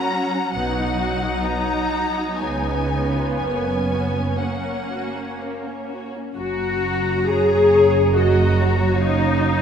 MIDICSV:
0, 0, Header, 1, 6, 480
1, 0, Start_track
1, 0, Key_signature, 6, "major"
1, 0, Tempo, 888889
1, 304, Time_signature, 3, 2, 24, 8
1, 788, Tempo, 941915
1, 1268, Tempo, 998336
1, 2708, Tempo, 963082
1, 3188, Tempo, 918836
1, 3668, Tempo, 877193
1, 4948, End_track
2, 0, Start_track
2, 0, Title_t, "Violin section"
2, 0, Program_c, 0, 48
2, 0, Note_on_c, 0, 82, 83
2, 292, Note_on_c, 0, 78, 72
2, 301, Note_off_c, 0, 82, 0
2, 773, Note_off_c, 0, 78, 0
2, 779, Note_on_c, 0, 82, 77
2, 1257, Note_on_c, 0, 80, 62
2, 1264, Note_off_c, 0, 82, 0
2, 1726, Note_off_c, 0, 80, 0
2, 1732, Note_on_c, 0, 80, 61
2, 2215, Note_off_c, 0, 80, 0
2, 2227, Note_on_c, 0, 78, 48
2, 2706, Note_off_c, 0, 78, 0
2, 3188, Note_on_c, 0, 82, 54
2, 4129, Note_off_c, 0, 82, 0
2, 4154, Note_on_c, 0, 82, 56
2, 4621, Note_off_c, 0, 82, 0
2, 4629, Note_on_c, 0, 77, 59
2, 4948, Note_off_c, 0, 77, 0
2, 4948, End_track
3, 0, Start_track
3, 0, Title_t, "Violin section"
3, 0, Program_c, 1, 48
3, 0, Note_on_c, 1, 61, 49
3, 0, Note_on_c, 1, 78, 53
3, 66, Note_off_c, 1, 61, 0
3, 72, Note_on_c, 1, 66, 44
3, 184, Note_on_c, 1, 61, 45
3, 188, Note_off_c, 1, 66, 0
3, 300, Note_on_c, 1, 59, 48
3, 303, Note_off_c, 1, 61, 0
3, 412, Note_off_c, 1, 59, 0
3, 426, Note_on_c, 1, 63, 48
3, 532, Note_on_c, 1, 66, 44
3, 544, Note_off_c, 1, 63, 0
3, 659, Note_off_c, 1, 66, 0
3, 661, Note_on_c, 1, 63, 43
3, 775, Note_on_c, 1, 59, 50
3, 787, Note_off_c, 1, 63, 0
3, 894, Note_on_c, 1, 63, 43
3, 900, Note_off_c, 1, 59, 0
3, 1019, Note_on_c, 1, 66, 43
3, 1020, Note_off_c, 1, 63, 0
3, 1143, Note_off_c, 1, 66, 0
3, 1145, Note_on_c, 1, 63, 40
3, 1246, Note_off_c, 1, 78, 0
3, 1267, Note_off_c, 1, 63, 0
3, 1267, Note_on_c, 1, 73, 42
3, 1269, Note_on_c, 1, 56, 39
3, 1377, Note_off_c, 1, 56, 0
3, 1383, Note_on_c, 1, 59, 40
3, 1502, Note_off_c, 1, 59, 0
3, 1513, Note_on_c, 1, 61, 37
3, 1628, Note_off_c, 1, 61, 0
3, 1629, Note_on_c, 1, 65, 37
3, 1748, Note_off_c, 1, 65, 0
3, 1762, Note_on_c, 1, 58, 37
3, 1868, Note_off_c, 1, 58, 0
3, 1879, Note_on_c, 1, 61, 34
3, 1995, Note_off_c, 1, 61, 0
3, 2000, Note_on_c, 1, 66, 34
3, 2108, Note_on_c, 1, 61, 38
3, 2116, Note_off_c, 1, 66, 0
3, 2230, Note_off_c, 1, 61, 0
3, 2233, Note_on_c, 1, 58, 39
3, 2353, Note_off_c, 1, 58, 0
3, 2356, Note_on_c, 1, 61, 35
3, 2474, Note_off_c, 1, 61, 0
3, 2476, Note_on_c, 1, 66, 37
3, 2593, Note_off_c, 1, 66, 0
3, 2593, Note_on_c, 1, 61, 35
3, 2709, Note_off_c, 1, 61, 0
3, 2716, Note_on_c, 1, 58, 39
3, 2833, Note_off_c, 1, 58, 0
3, 2841, Note_on_c, 1, 61, 35
3, 2957, Note_off_c, 1, 61, 0
3, 2965, Note_on_c, 1, 66, 35
3, 3064, Note_off_c, 1, 73, 0
3, 3078, Note_off_c, 1, 66, 0
3, 3086, Note_on_c, 1, 61, 32
3, 3196, Note_off_c, 1, 61, 0
3, 3677, Note_on_c, 1, 73, 66
3, 4134, Note_off_c, 1, 73, 0
3, 4154, Note_on_c, 1, 75, 58
3, 4391, Note_off_c, 1, 75, 0
3, 4396, Note_on_c, 1, 73, 63
3, 4948, Note_off_c, 1, 73, 0
3, 4948, End_track
4, 0, Start_track
4, 0, Title_t, "Viola section"
4, 0, Program_c, 2, 48
4, 0, Note_on_c, 2, 54, 58
4, 0, Note_on_c, 2, 61, 56
4, 283, Note_off_c, 2, 54, 0
4, 296, Note_on_c, 2, 63, 57
4, 298, Note_on_c, 2, 54, 53
4, 301, Note_off_c, 2, 61, 0
4, 1246, Note_off_c, 2, 54, 0
4, 1273, Note_on_c, 2, 59, 45
4, 1742, Note_off_c, 2, 63, 0
4, 1751, Note_on_c, 2, 61, 42
4, 2232, Note_on_c, 2, 58, 39
4, 2234, Note_off_c, 2, 59, 0
4, 3084, Note_off_c, 2, 58, 0
4, 3087, Note_off_c, 2, 61, 0
4, 3188, Note_on_c, 2, 66, 85
4, 3647, Note_off_c, 2, 66, 0
4, 3665, Note_on_c, 2, 68, 78
4, 4150, Note_off_c, 2, 68, 0
4, 4154, Note_on_c, 2, 66, 72
4, 4629, Note_on_c, 2, 63, 89
4, 4630, Note_off_c, 2, 66, 0
4, 4948, Note_off_c, 2, 63, 0
4, 4948, End_track
5, 0, Start_track
5, 0, Title_t, "Cello section"
5, 0, Program_c, 3, 48
5, 301, Note_on_c, 3, 47, 62
5, 704, Note_off_c, 3, 47, 0
5, 1263, Note_on_c, 3, 49, 43
5, 1661, Note_off_c, 3, 49, 0
5, 1743, Note_on_c, 3, 42, 47
5, 2149, Note_off_c, 3, 42, 0
5, 3185, Note_on_c, 3, 42, 60
5, 4948, Note_off_c, 3, 42, 0
5, 4948, End_track
6, 0, Start_track
6, 0, Title_t, "Double bass section"
6, 0, Program_c, 4, 48
6, 299, Note_on_c, 4, 35, 57
6, 703, Note_off_c, 4, 35, 0
6, 1267, Note_on_c, 4, 37, 47
6, 1663, Note_off_c, 4, 37, 0
6, 1743, Note_on_c, 4, 30, 46
6, 2150, Note_off_c, 4, 30, 0
6, 3189, Note_on_c, 4, 30, 57
6, 4948, Note_off_c, 4, 30, 0
6, 4948, End_track
0, 0, End_of_file